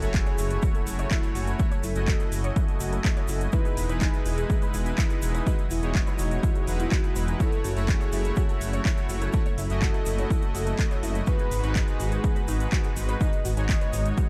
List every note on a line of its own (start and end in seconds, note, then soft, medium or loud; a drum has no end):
0.00 0.21 F#1 loud
0.00 3.49 F#3 medium
0.00 3.49 A3 medium
0.00 1.57 A3 loud
0.00 3.49 C#4 medium
0.00 3.49 E4 medium
0.00 1.57 E4 medium
0.00 1.57 F#4 medium
0.00 0.09 A4 medium
0.00 1.57 C#5 loud
0.00 11.23 G#5 medium
0.00 0.09 A5 medium
0.00 closed hi-hat medium
0.00 sub drop medium
0.00 shaker soft
0.14 0.77 G#4 loud
0.14 kick loud
0.14 clap loud
0.14 closed hi-hat medium
0.14 shaker medium
0.26 0.30 C#5 loud
0.26 0.30 C#6 medium
0.26 closed hi-hat soft
0.26 shaker soft
0.38 0.58 F#1 medium
0.38 0.45 E4 medium
0.38 0.45 E5 medium
0.38 open hi-hat loud
0.38 shaker medium
0.50 closed hi-hat medium
0.50 shaker soft
0.62 0.69 F#4 medium
0.62 0.69 F#5 medium
0.62 kick loud
0.62 closed hi-hat medium
0.62 shaker medium
0.75 0.81 A4 medium
0.75 0.82 A5 medium
0.75 closed hi-hat soft
0.75 shaker soft
0.87 1.06 F#1 medium
0.87 open hi-hat loud
0.87 shaker loud
0.99 1.03 C#5 loud
0.99 1.03 C#6 medium
0.99 closed hi-hat medium
0.99 shaker soft
1.11 1.18 E4 medium
1.11 1.18 E5 medium
1.11 kick loud
1.11 clap loud
1.11 closed hi-hat medium
1.11 shaker medium
1.23 closed hi-hat soft
1.23 shaker soft
1.35 1.54 F#1 loud
1.35 1.42 F#4 medium
1.35 1.42 F#5 medium
1.35 open hi-hat loud
1.35 shaker medium
1.47 1.54 A4 medium
1.47 1.54 A5 medium
1.47 closed hi-hat medium
1.47 shaker soft
1.59 1.69 A3 medium
1.59 1.69 E4 medium
1.59 1.69 F#4 medium
1.59 3.43 A4 loud
1.59 1.69 C#5 loud
1.59 kick loud
1.59 closed hi-hat medium
1.59 shaker medium
1.72 1.76 C#5 loud
1.72 1.76 C#6 medium
1.72 closed hi-hat soft
1.72 shaker soft
1.83 1.93 F#1 loud
1.83 1.90 E4 medium
1.83 1.90 E5 medium
1.83 open hi-hat loud
1.83 shaker medium
1.95 2.15 F#1 loud
1.95 3.50 A3 medium
1.95 3.50 E4 medium
1.95 3.50 F#4 medium
1.95 3.50 D#5 medium
1.95 closed hi-hat medium
1.95 shaker soft
2.08 2.15 F#4 medium
2.08 2.15 F#5 medium
2.08 kick loud
2.08 clap loud
2.08 closed hi-hat medium
2.08 shaker medium
2.20 2.27 A4 medium
2.20 2.27 A5 medium
2.20 closed hi-hat soft
2.20 shaker soft
2.32 2.51 F#1 medium
2.32 open hi-hat loud
2.32 shaker loud
2.44 2.48 C#5 loud
2.44 2.48 C#6 medium
2.44 closed hi-hat medium
2.44 shaker soft
2.56 2.63 E4 medium
2.56 2.63 E5 medium
2.56 kick loud
2.56 closed hi-hat medium
2.56 shaker medium
2.68 closed hi-hat soft
2.68 shaker soft
2.80 2.99 F#1 medium
2.80 2.87 F#4 medium
2.80 2.87 F#5 medium
2.80 open hi-hat loud
2.80 shaker loud
2.93 2.99 A4 medium
2.93 2.99 A5 medium
2.93 closed hi-hat medium
2.93 shaker soft
3.05 kick loud
3.05 clap loud
3.05 closed hi-hat medium
3.05 shaker medium
3.17 3.21 C#5 loud
3.17 3.21 C#6 medium
3.17 closed hi-hat soft
3.17 shaker soft
3.28 3.48 F#1 loud
3.28 3.36 E4 medium
3.28 3.36 E5 medium
3.28 open hi-hat loud
3.28 shaker loud
3.41 closed hi-hat medium
3.41 shaker soft
3.52 7.36 E3 medium
3.52 3.86 G#3 medium
3.52 7.36 B3 medium
3.52 3.86 D#4 medium
3.52 3.86 E4 medium
3.52 3.60 E4 medium
3.52 7.36 F#4 medium
3.52 3.97 B4 loud
3.52 3.86 B4 medium
3.52 7.36 D#5 medium
3.52 3.60 E5 medium
3.52 kick loud
3.52 closed hi-hat medium
3.52 shaker medium
3.65 3.72 G#4 medium
3.65 3.72 G#5 medium
3.65 closed hi-hat soft
3.65 shaker soft
3.77 3.87 E1 medium
3.77 open hi-hat loud
3.77 shaker medium
3.89 4.08 E1 loud
3.89 5.44 G#3 loud
3.89 5.44 D#4 medium
3.89 5.44 E4 medium
3.89 3.93 B4 loud
3.89 5.44 B4 loud
3.89 3.93 B5 medium
3.89 closed hi-hat medium
3.89 shaker soft
4.01 4.08 D#4 medium
4.01 4.64 G#4 loud
4.01 4.08 D#5 medium
4.01 kick loud
4.01 clap loud
4.01 closed hi-hat medium
4.01 shaker medium
4.14 closed hi-hat soft
4.14 shaker soft
4.25 4.45 E1 medium
4.25 4.32 E4 medium
4.25 4.32 E5 medium
4.25 open hi-hat loud
4.25 shaker medium
4.38 4.44 G#4 medium
4.38 4.44 G#5 medium
4.38 closed hi-hat medium
4.38 shaker soft
4.50 kick loud
4.50 closed hi-hat medium
4.50 shaker medium
4.62 4.66 B4 loud
4.62 4.66 B5 medium
4.62 closed hi-hat soft
4.62 shaker soft
4.74 4.93 E1 medium
4.74 4.81 D#4 medium
4.74 4.81 D#5 medium
4.74 open hi-hat loud
4.74 shaker medium
4.86 closed hi-hat medium
4.86 shaker soft
4.98 5.05 E4 medium
4.98 5.05 E5 medium
4.98 kick loud
4.98 clap loud
4.98 closed hi-hat medium
4.98 shaker medium
5.10 5.17 G#4 medium
5.10 5.17 G#5 medium
5.10 closed hi-hat soft
5.10 shaker soft
5.22 5.41 E1 loud
5.22 open hi-hat loud
5.22 shaker loud
5.35 5.38 B4 loud
5.35 5.38 B5 medium
5.35 closed hi-hat medium
5.35 shaker soft
5.47 5.56 G#3 loud
5.47 5.56 D#4 medium
5.47 5.53 D#4 medium
5.47 5.56 E4 medium
5.47 7.42 F#4 loud
5.47 5.56 B4 loud
5.47 5.53 D#5 medium
5.47 kick loud
5.47 closed hi-hat medium
5.47 shaker medium
5.58 closed hi-hat soft
5.58 shaker soft
5.71 5.80 E1 loud
5.71 5.77 E4 medium
5.71 5.77 E5 medium
5.71 open hi-hat loud
5.71 shaker loud
5.82 6.02 E1 loud
5.82 6.65 G#3 medium
5.82 6.65 D#4 medium
5.82 6.65 E4 medium
5.82 5.90 G#4 medium
5.82 6.65 C#5 medium
5.82 5.90 G#5 medium
5.82 closed hi-hat soft
5.82 shaker soft
5.95 kick loud
5.95 clap loud
5.95 closed hi-hat soft
5.95 shaker medium
6.07 6.11 B4 loud
6.07 6.11 B5 medium
6.07 closed hi-hat soft
6.07 shaker soft
6.19 6.38 E1 medium
6.19 6.26 D#4 medium
6.19 6.26 D#5 medium
6.19 open hi-hat loud
6.19 shaker medium
6.31 closed hi-hat medium
6.31 shaker soft
6.43 6.50 E4 medium
6.43 6.50 E5 medium
6.43 kick loud
6.43 closed hi-hat medium
6.43 shaker medium
6.55 6.62 G#4 medium
6.55 6.62 G#5 medium
6.55 closed hi-hat soft
6.55 shaker soft
6.67 6.87 E1 medium
6.67 7.37 G#3 loud
6.67 7.37 D#4 medium
6.67 7.37 E4 medium
6.67 7.37 B4 loud
6.67 open hi-hat loud
6.67 shaker loud
6.80 6.84 E4 loud
6.80 6.84 E5 medium
6.80 closed hi-hat medium
6.80 shaker soft
6.92 6.96 D#4 medium
6.92 6.96 D#5 medium
6.92 kick loud
6.92 clap loud
6.92 closed hi-hat medium
6.92 shaker medium
7.04 7.11 D#4 medium
7.04 7.11 D#5 medium
7.04 closed hi-hat soft
7.04 shaker soft
7.16 7.35 E1 loud
7.16 7.23 B4 medium
7.16 7.23 B5 medium
7.16 open hi-hat loud
7.16 shaker medium
7.28 7.38 D#4 medium
7.28 7.38 D#5 medium
7.28 closed hi-hat medium
7.28 shaker soft
7.40 11.23 F#3 medium
7.40 7.74 A3 medium
7.40 11.23 A3 medium
7.40 11.23 C#4 medium
7.40 7.47 E4 medium
7.40 7.74 E4 medium
7.40 11.23 E4 medium
7.40 7.74 F#4 medium
7.40 7.90 A4 loud
7.40 7.74 C#5 medium
7.40 7.47 E5 medium
7.40 kick loud
7.40 closed hi-hat medium
7.40 shaker medium
7.52 closed hi-hat soft
7.52 shaker soft
7.64 7.74 F#1 loud
7.64 7.71 F#4 medium
7.64 7.71 F#5 medium
7.64 open hi-hat loud
7.64 shaker medium
7.76 7.95 F#1 loud
7.76 9.31 A3 loud
7.76 9.31 E4 medium
7.76 9.31 F#4 medium
7.76 7.83 A4 medium
7.76 9.31 C#5 loud
7.76 7.83 A5 medium
7.76 closed hi-hat soft
7.76 shaker soft
7.88 8.51 G#4 loud
7.88 kick loud
7.88 clap loud
7.88 closed hi-hat medium
7.88 shaker medium
8.01 8.05 C#5 loud
8.01 8.05 C#6 medium
8.01 closed hi-hat soft
8.01 shaker soft
8.12 8.32 F#1 medium
8.12 8.19 E4 medium
8.12 8.19 E5 medium
8.12 open hi-hat loud
8.12 shaker medium
8.24 closed hi-hat medium
8.24 shaker soft
8.36 8.44 F#4 medium
8.36 8.44 F#5 medium
8.36 kick loud
8.36 closed hi-hat medium
8.36 shaker medium
8.49 8.56 A4 medium
8.49 8.56 A5 medium
8.49 closed hi-hat soft
8.49 shaker soft
8.61 8.80 F#1 medium
8.61 open hi-hat loud
8.61 shaker medium
8.73 8.77 C#5 loud
8.73 8.77 C#6 medium
8.73 closed hi-hat medium
8.73 shaker soft
8.85 8.92 E4 medium
8.85 8.92 E5 medium
8.85 kick loud
8.85 clap loud
8.85 closed hi-hat medium
8.85 shaker medium
8.97 closed hi-hat soft
8.97 shaker soft
9.09 9.28 F#1 loud
9.09 9.16 F#4 medium
9.09 9.16 F#5 medium
9.09 open hi-hat loud
9.09 shaker medium
9.21 9.28 A4 medium
9.21 9.28 A5 medium
9.21 closed hi-hat medium
9.21 shaker soft
9.33 9.43 A3 loud
9.33 9.43 E4 medium
9.33 9.43 F#4 medium
9.33 11.18 A4 loud
9.33 9.43 C#5 loud
9.33 kick loud
9.33 closed hi-hat medium
9.33 shaker medium
9.46 9.50 C#5 loud
9.46 9.50 C#6 medium
9.46 closed hi-hat soft
9.46 shaker soft
9.58 9.67 F#1 loud
9.58 9.65 E4 medium
9.58 9.65 E5 medium
9.58 open hi-hat loud
9.58 shaker medium
9.70 9.89 F#1 loud
9.70 11.24 A3 medium
9.70 11.24 E4 medium
9.70 11.24 F#4 medium
9.70 11.24 D#5 medium
9.70 closed hi-hat medium
9.70 shaker soft
9.82 9.89 F#4 medium
9.82 9.89 F#5 medium
9.82 kick loud
9.82 clap loud
9.82 closed hi-hat medium
9.82 shaker soft
9.94 10.01 A4 medium
9.94 10.01 A5 medium
9.94 closed hi-hat soft
9.94 shaker soft
10.06 10.25 F#1 medium
10.06 open hi-hat loud
10.06 shaker medium
10.18 10.22 C#5 loud
10.18 10.22 C#6 medium
10.18 closed hi-hat medium
10.18 shaker soft
10.30 10.37 E4 medium
10.30 10.37 E5 medium
10.30 kick loud
10.30 closed hi-hat medium
10.30 shaker medium
10.42 closed hi-hat soft
10.42 shaker soft
10.55 10.74 F#1 medium
10.55 10.61 F#4 medium
10.55 10.61 F#5 medium
10.55 open hi-hat loud
10.55 shaker medium
10.66 10.73 A4 medium
10.66 10.73 A5 medium
10.66 closed hi-hat medium
10.66 shaker soft
10.79 kick loud
10.79 clap loud
10.79 closed hi-hat medium
10.79 shaker medium
10.91 10.95 C#5 loud
10.91 10.95 C#6 medium
10.91 closed hi-hat soft
10.91 shaker soft
11.03 11.22 F#1 loud
11.03 11.10 E4 medium
11.03 11.10 E5 medium
11.03 open hi-hat loud
11.03 shaker medium
11.15 closed hi-hat medium
11.15 shaker soft
11.27 11.61 G#2 medium
11.27 11.61 G#3 medium
11.27 14.29 G#3 medium
11.27 14.29 B3 medium
11.27 11.61 D#4 medium
11.27 11.61 F#4 medium
11.27 13.19 F#4 medium
11.27 11.34 F#4 medium
11.27 11.61 B4 medium
11.27 11.71 B4 loud
11.27 11.34 F#5 medium
11.27 kick loud
11.27 closed hi-hat medium
11.27 shaker medium
11.39 11.46 G#4 medium
11.39 11.46 G#5 medium
11.39 closed hi-hat soft
11.39 shaker soft
11.51 11.61 G#1 loud
11.51 open hi-hat loud
11.51 shaker medium
11.64 11.83 G#1 loud
11.64 13.18 G#2 loud
11.64 13.18 G#3 medium
11.64 13.18 D#4 medium
11.64 13.18 F#4 medium
11.64 13.18 B4 loud
11.64 11.68 B4 loud
11.64 11.68 B5 medium
11.64 closed hi-hat medium
11.64 shaker soft
11.76 11.82 D#4 medium
11.76 12.39 G#4 loud
11.76 11.82 D#5 medium
11.76 kick loud
11.76 clap loud
11.76 closed hi-hat medium
11.76 shaker medium
11.88 closed hi-hat soft
11.88 shaker soft
12.00 12.19 G#1 medium
12.00 12.07 F#4 medium
12.00 12.07 F#5 medium
12.00 open hi-hat loud
12.00 shaker medium
12.12 12.19 G#4 medium
12.12 12.19 G#5 medium
12.12 closed hi-hat medium
12.12 shaker soft
12.24 kick loud
12.24 closed hi-hat medium
12.24 shaker soft
12.36 12.40 B4 loud
12.36 12.40 B5 medium
12.36 closed hi-hat soft
12.36 shaker soft
12.48 12.67 G#1 medium
12.48 12.55 D#4 medium
12.48 12.55 D#5 medium
12.48 open hi-hat loud
12.48 shaker medium
12.60 closed hi-hat medium
12.60 shaker soft
12.72 12.79 F#4 medium
12.72 12.79 F#5 medium
12.72 kick loud
12.72 clap loud
12.72 closed hi-hat medium
12.72 shaker soft
12.84 12.91 G#4 medium
12.84 12.91 G#5 medium
12.84 closed hi-hat soft
12.84 shaker soft
12.96 13.16 G#1 loud
12.96 open hi-hat loud
12.96 shaker medium
13.09 13.13 B4 loud
13.09 13.13 B5 medium
13.09 closed hi-hat medium
13.09 shaker soft
13.21 13.30 G#2 loud
13.21 13.30 G#3 medium
13.21 13.30 D#4 medium
13.21 13.27 D#4 medium
13.21 13.30 F#4 medium
13.21 13.30 B4 loud
13.21 14.29 D#5 loud
13.21 13.27 D#5 medium
13.21 14.29 G#5 medium
13.21 kick loud
13.21 closed hi-hat medium
13.21 shaker medium
13.33 closed hi-hat soft
13.33 shaker soft
13.45 13.55 G#1 loud
13.45 13.52 F#4 medium
13.45 13.52 F#5 medium
13.45 open hi-hat loud
13.45 shaker medium
13.57 13.76 G#1 loud
13.57 14.29 G#2 medium
13.57 14.29 G#3 medium
13.57 14.29 D#4 medium
13.57 14.29 F#4 medium
13.57 13.64 G#4 medium
13.57 14.29 C#5 medium
13.57 13.64 G#5 medium
13.57 closed hi-hat medium
13.57 shaker soft
13.69 kick loud
13.69 clap loud
13.69 closed hi-hat medium
13.69 shaker medium
13.81 13.85 B4 loud
13.81 13.85 B5 medium
13.81 closed hi-hat soft
13.81 shaker soft
13.93 14.12 G#1 medium
13.93 14.00 D#4 medium
13.93 14.00 D#5 medium
13.93 open hi-hat loud
13.93 shaker medium
14.06 closed hi-hat medium
14.06 shaker soft
14.17 14.24 F#4 medium
14.17 14.24 F#5 medium
14.17 kick loud
14.17 closed hi-hat medium
14.17 shaker medium